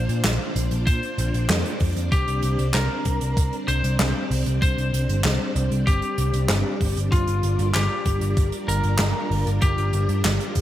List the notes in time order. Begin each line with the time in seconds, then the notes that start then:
Already playing: A#3 D4 F4 C5 D5
0.09 A#2, closed hi-hat
0.24 A#1, snare, clap, closed hi-hat
0.56 A#1, closed hi-hat
0.71 A#1, closed hi-hat
0.87 A#2 C5, kick, closed hi-hat
1.03 closed hi-hat
1.18 A#1, closed hi-hat
1.34 A#1, closed hi-hat
1.49 F2, snare, clap, closed hi-hat
1.65 closed hi-hat
1.80 F2, kick, open hi-hat
1.96 F2, closed hi-hat
2.12 C2 G3 C4 G4, kick, closed hi-hat
2.28 C2, closed hi-hat
2.42 C2, closed hi-hat
2.59 C2, closed hi-hat
2.74 C2 A#4, snare, clap, closed hi-hat
3.05 C2, kick, closed hi-hat
3.21 C2, closed hi-hat
3.37 C2, kick, closed hi-hat
3.53 closed hi-hat
3.68 C2 C5, closed hi-hat
3.84 C2, closed hi-hat
3.99 C2, snare, clap, closed hi-hat
4.31 C2, open hi-hat
4.46 C2, closed hi-hat
4.62 C2 C5, kick, closed hi-hat
4.78 C2, closed hi-hat
4.93 C2, closed hi-hat
5.09 G1, closed hi-hat
5.24 C2, snare, clap, closed hi-hat
5.56 C2, closed hi-hat
5.71 C2, closed hi-hat
5.87 G1 G4, kick, closed hi-hat
6.02 closed hi-hat
6.18 C2, closed hi-hat
6.33 C2, closed hi-hat
6.49 G1, snare, clap, closed hi-hat
6.81 G1, kick, open hi-hat
6.96 G1, closed hi-hat
7.12 G1 D4 F4 A#4 D5, kick, closed hi-hat
7.27 G1, closed hi-hat
7.43 G1, closed hi-hat
7.59 G1, closed hi-hat
7.74 G1 G4, snare, clap, closed hi-hat
8.05 G1, kick, closed hi-hat
8.21 G1, closed hi-hat
8.37 G1, kick, closed hi-hat
8.52 closed hi-hat
8.68 G1 A#4, closed hi-hat
8.84 G1, closed hi-hat
8.98 G1, snare, clap, closed hi-hat
9.31 G1, open hi-hat
9.46 G1, closed hi-hat
9.61 G1 G4 C5, kick, closed hi-hat
9.78 G1, closed hi-hat
9.93 G1, closed hi-hat
10.09 G2, closed hi-hat
10.24 G1, snare, clap, closed hi-hat
10.40 closed hi-hat
10.55 G1, kick, closed hi-hat